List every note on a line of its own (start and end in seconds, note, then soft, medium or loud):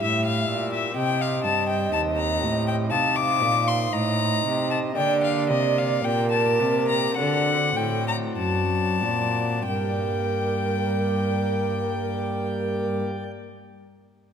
0.00 0.48 A2 medium
0.00 0.45 A2 medium
0.00 0.90 E4 soft
0.00 0.90 G4 soft
0.00 0.68 E5 medium
0.00 0.91 E5 soft
0.00 0.25 E5 medium
0.25 0.71 F5 medium
0.49 0.95 A#2 medium
0.49 0.92 A#2 medium
0.73 0.96 E5 medium
0.91 2.84 C4 soft
0.91 2.85 G4 soft
0.91 2.86 D#5 soft
0.96 1.39 C3 soft
0.96 1.45 C3 medium
0.96 2.93 D#5 medium
0.96 1.23 G5 medium
1.21 1.43 F5 medium
1.43 1.88 G2 soft
1.43 1.91 G2 medium
1.43 1.67 A5 medium
1.69 1.92 G5 medium
1.92 2.37 D#2 soft
1.92 2.43 D#2 medium
1.92 2.01 A5 medium
2.17 2.65 A#5 medium
2.41 2.87 A2 medium
2.41 2.92 A2 medium
2.67 2.75 G5 medium
2.86 4.90 C4 soft
2.86 4.90 D#4 soft
2.86 4.91 D#5 soft
2.91 3.42 C3 medium
2.91 3.37 C3 soft
2.91 3.94 F5 medium
2.91 3.17 A5 medium
3.16 3.69 D6 medium
3.41 3.88 A#2 medium
3.41 3.91 A#2 medium
3.68 3.94 C6 medium
3.92 4.43 A2 medium
3.92 4.40 A2 medium
3.92 4.96 D#5 medium
3.92 4.70 A#5 medium
4.44 4.92 C3 medium
4.44 4.95 C3 medium
4.71 4.79 A5 medium
4.92 7.10 A#3 soft
4.92 7.11 G4 soft
4.92 7.12 D5 soft
4.96 5.45 D3 medium
4.96 5.51 D3 medium
4.96 6.02 D5 medium
4.96 5.22 G5 medium
5.24 5.49 F5 medium
5.49 6.00 C3 soft
5.49 6.03 C3 medium
5.49 5.79 D#5 medium
5.78 6.06 F5 medium
6.04 6.55 A#2 soft
6.04 6.61 A#2 medium
6.04 7.14 A#4 medium
6.04 6.31 G5 medium
6.31 6.86 A5 medium
6.59 7.16 C3 medium
6.59 7.13 C3 medium
6.88 7.16 A#5 medium
7.13 7.75 D3 medium
7.13 9.61 C4 soft
7.13 9.62 F#4 soft
7.13 9.63 D5 soft
7.13 7.77 F#5 medium
7.18 7.73 D3 soft
7.18 8.00 A4 medium
7.76 8.37 A2 medium
7.76 8.34 A2 medium
7.76 8.06 G5 medium
8.08 8.16 A#5 medium
8.38 9.04 F#2 medium
8.38 8.98 F#2 medium
8.38 8.98 F#4 soft
8.38 9.64 A5 medium
9.02 9.63 A#2 soft
9.02 9.67 A#2 medium
9.67 13.02 G2 medium
9.67 13.02 G3 soft
9.67 13.03 A#4 medium
9.67 13.02 G5 medium
9.74 13.10 A#3 soft
9.81 13.17 G4 soft
9.88 13.23 D5 soft
9.95 13.31 G5 soft